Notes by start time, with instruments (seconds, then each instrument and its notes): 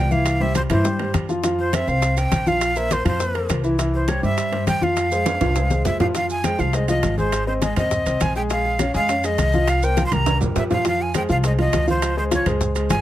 Already playing: upright bass C2, flute G5
0.11 grand piano E3 E4 E5, flute F5, high conga, maracas
0.26 high bongo, high conga, high timbale, maracas
0.40 grand piano G3 G4 C5, flute E5, high bongo, high conga
0.55 flute C5, high bongo, high conga, high timbale, maracas
0.70 upright bass G2, grand piano E3 E4 E5, flute C5, high conga, low conga, high timbale, maracas
0.84 grand piano G3 G4 C5, high bongo, maracas
0.99 grand piano G3 G4 C5, high bongo, high conga, high timbale
1.14 upright bass F2, high bongo, low bongo, high conga, high timbale, maracas
1.29 grand piano F3 F4 F5, high bongo, high conga, maracas
1.44 grand piano F3 F4 F5, high bongo, high conga, high timbale, maracas
1.58 flute C5, high bongo, high conga
1.73 grand piano C4 C5, flute E5, high bongo, high conga, high timbale, maracas
1.87 upright bass C2, grand piano C4 C5, flute F5, high bongo, high conga, maracas
2.02 high bongo, high conga, high timbale, maracas
2.17 grand piano C4 C5, flute G5, high bongo, high conga, high timbale, maracas
2.31 upright bass A#1, high bongo, low bongo, high conga, high timbale, maracas
2.46 grand piano F3 F4 F5, flute F5, high conga, maracas
2.61 high bongo, high conga, high timbale, maracas
2.76 grand piano A#3 A#4 C5, flute E5, high bongo, high conga, maracas
2.91 flute C5, high bongo, high conga, high timbale, maracas
3.05 upright bass F2, grand piano F3 F4 F5, flute C5, high conga, low conga, high timbale, maracas
3.19 grand piano A#3 A#4 C5, high bongo, high conga, maracas
3.34 grand piano A#3 A#4 C5, high bongo, high conga, high timbale
3.49 upright bass C2, high bongo, low bongo, high conga, high timbale, low timbale, maracas
3.64 grand piano E3 E4 E5, high bongo, high conga, maracas
3.78 grand piano E3 E4 E5, high bongo, high conga, high timbale, maracas
3.93 flute C5, high bongo, high conga
4.08 grand piano G3 G4 C5, flute C#5, high bongo, high conga, high timbale, maracas
4.23 upright bass G2, grand piano G3 G4 C5, flute E5, high bongo, high conga, maracas
4.38 high bongo, high conga, high timbale, maracas
4.52 grand piano G3 G4 C5, high bongo, high conga, high timbale
4.67 upright bass F2, flute G5, high bongo, low bongo, high conga, high timbale, maracas
4.81 grand piano F3 F4 F5, flute F5, high conga, maracas
4.96 high bongo, high conga, high timbale, maracas
5.11 grand piano G#3 G#4 C5, high bongo, high conga, maracas
5.26 high bongo, high conga, high timbale, maracas
5.41 upright bass C2, grand piano F3 F4 F5, high conga, low conga, high timbale, maracas
5.56 grand piano G#3 G#4 C5, high bongo, high conga, high timbale, maracas
5.70 grand piano G#3 G#4 C5, high bongo, high conga, maracas
5.85 upright bass F2, flute E5, low bongo, low conga, low timbale, maracas
6.00 grand piano F3 F4 F5, flute F5, low bongo, low conga, low timbale, maracas
6.15 grand piano F3 F4 F5, flute F5, high bongo, high conga, high timbale, maracas
6.29 flute G#5, high bongo, high conga, maracas
6.44 grand piano G#3 G#4 C5, flute G5, high bongo, high conga, high timbale, maracas
6.58 upright bass C2, grand piano F3 F4 F5, flute F5, high bongo, high conga, maracas
6.73 grand piano G#3 G#4 C5, flute D#5, high bongo, high conga, high timbale, maracas
6.88 grand piano F3 F4 F5, flute D#5, high bongo, high conga, high timbale, maracas
7.03 upright bass G#1, high bongo, low bongo, high conga, high timbale, low timbale, maracas
7.17 grand piano G#3 G#4 G#5, flute C5, high conga, maracas
7.32 high bongo, high conga, high timbale, maracas
7.47 grand piano C4 C5 D#5, flute C5, high bongo, high conga
7.62 grand piano G#3 G#4 G#5, flute D#5, high bongo, high conga, high timbale, maracas
7.76 upright bass D#2, grand piano C4 C5 D#5, flute D#5, high conga, low conga, high timbale, maracas
7.91 high bongo, high conga, low conga, maracas
8.06 upright bass C2, grand piano C4 C5 D#5, high bongo, high conga, high timbale, maracas
8.20 upright bass A#1, flute G#5, high bongo, low bongo, high conga, high timbale, maracas
8.35 grand piano G#3 G#4 G#5, flute G5, high bongo, high conga, maracas
8.50 grand piano G#3 G#4 G#5, flute F5, high bongo, high conga, high timbale, maracas
8.65 high bongo, high conga
8.79 grand piano C#4 C#5 F5, high bongo, high conga, high timbale, maracas
8.94 upright bass F2, grand piano G#3 G#4 G#5, flute F5, high bongo, high conga, maracas
9.09 grand piano C#4 C#5 F5, high bongo, high conga, high timbale, maracas
9.24 grand piano G#3 G#4 G#5, flute D#5, high bongo, high conga, high timbale, maracas
9.38 upright bass C2, high bongo, low bongo, high conga, high timbale, maracas
9.53 grand piano F3 F4 F5, high conga, maracas
9.68 flute F5, high bongo, high conga, high timbale, maracas
9.83 grand piano A#3 A#4 C5, flute G5, high bongo, high conga, maracas
9.97 grand piano F3 F4 F5, high bongo, high conga, high timbale, maracas
10.06 flute C6
10.11 upright bass C2, grand piano G3 G4 A#4, flute A#5, high conga, high timbale, maracas
10.26 high bongo, high conga, high timbale, maracas
10.41 upright bass E2, grand piano G3 G4 A#4, high bongo, low conga, low timbale, maracas
10.56 upright bass F2, flute E5, high bongo, low bongo, low conga, low timbale, maracas
10.70 grand piano F3 F4 F5, flute F5, high bongo, low conga, low timbale, maracas
10.85 grand piano F3 F4 F5, flute F5, high bongo, high conga, high timbale, maracas
11.00 flute G#5, high bongo, high conga
11.14 grand piano G#3 G#4 C5, flute G5, high bongo, high conga, high timbale, maracas
11.29 upright bass C2, grand piano F3 F4 F5, flute F5, high bongo, high conga, maracas
11.44 grand piano G#3 G#4 C5, flute D#5, high bongo, high conga, high timbale, maracas
11.58 grand piano F3 F4 F5, flute D#5, high bongo, high conga, high timbale
11.73 upright bass C#2, high bongo, low bongo, high conga, high timbale, low timbale, maracas
11.87 grand piano F3 F4 F5, flute C5, high conga, maracas
12.02 high bongo, high conga, high timbale, maracas
12.17 grand piano G#3 G#4 C5, flute C5, high bongo, high conga
12.31 grand piano F3 F4 F5, flute C#5, high bongo, high conga, high timbale, maracas
12.46 upright bass C#2, grand piano G#3 G#4 C5, high conga, low conga, high timbale, maracas
12.61 high bongo, high conga, low conga, maracas
12.75 grand piano G#3 G#4 C5, high bongo, high conga, high timbale, maracas
12.90 upright bass G1, flute G#5, high bongo, low bongo, high conga, high timbale, low timbale, maracas